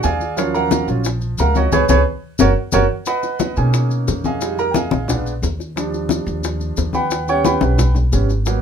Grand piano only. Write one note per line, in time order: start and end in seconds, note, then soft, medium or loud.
0.00 0.18 G#3 medium
0.00 0.18 D4 soft
0.00 0.35 G#5 medium
0.04 0.35 G#4 medium
0.04 0.35 D5 medium
0.04 0.35 F5 medium
0.37 1.68 F3 medium
0.37 0.86 F#3 medium
0.37 0.87 C#4 medium
0.37 0.54 F4 medium
0.37 0.54 A#4 medium
0.37 0.54 C#5 medium
0.37 0.54 F5 medium
0.54 0.86 A#4 medium
0.54 0.86 F5 medium
0.54 0.86 F#5 medium
0.54 0.86 A#5 medium
0.88 1.03 F#3 soft
0.88 1.04 C#4 soft
0.88 1.04 F4 soft
1.40 1.56 A#4 medium
1.40 1.56 F5 medium
1.40 1.55 F#5 medium
1.40 1.56 A#5 medium
1.56 1.72 F#4 medium
1.56 1.71 C#5 medium
1.56 1.72 D#5 medium
1.56 1.72 F#5 medium
1.72 1.83 G#4 medium
1.72 1.83 B4 medium
1.72 1.83 C#5 loud
1.90 2.00 G#4 medium
1.90 2.00 B4 loud
1.90 2.00 C#5 loud
2.40 2.51 F#4 loud
2.40 2.51 A#4 medium
2.40 2.51 C#5 medium
2.73 2.84 F#4 loud
2.73 2.84 A#4 medium
2.73 2.84 C#5 medium
3.07 3.54 B4 medium
3.07 3.54 D#5 medium
3.07 3.54 F#5 medium
3.07 3.54 B5 medium
3.57 4.37 A#3 soft
3.57 4.38 C#4 soft
3.57 4.38 D#4 medium
3.57 3.89 G#4 medium
3.57 3.89 G#5 medium
4.26 4.57 G#4 medium
4.26 4.57 D#5 medium
4.26 4.57 F5 medium
4.26 4.57 G#5 medium
4.41 4.64 G3 medium
4.41 4.64 G#3 soft
4.41 4.65 D#4 medium
4.59 4.75 A#4 medium
4.59 4.75 A#5 medium
4.71 4.74 G5 medium
4.75 5.22 G#4 medium
4.75 5.07 D#5 medium
4.75 5.23 F5 medium
4.75 5.22 G#5 medium
5.08 5.31 G#3 medium
5.08 5.31 B3 soft
5.08 5.31 D4 medium
5.76 7.07 F3 medium
5.76 7.07 G3 soft
5.76 7.08 D4 medium
6.95 7.26 B4 medium
6.95 7.26 F#5 medium
6.95 7.26 G5 medium
6.95 7.26 B5 medium
7.28 7.76 G3 medium
7.28 7.76 B3 soft
7.28 7.77 C#4 medium
7.28 7.45 C#5 medium
7.28 7.44 F#5 medium
7.28 7.44 G5 medium
7.28 7.45 C#6 loud
7.45 7.92 B4 medium
7.45 7.92 F#5 medium
7.45 7.92 G5 medium
7.45 7.92 B5 medium
8.12 8.27 G3 soft
8.12 8.28 B3 soft
8.12 8.28 C#4 medium
8.46 8.62 F#3 medium
8.46 8.62 A#3 medium
8.46 8.62 B3 medium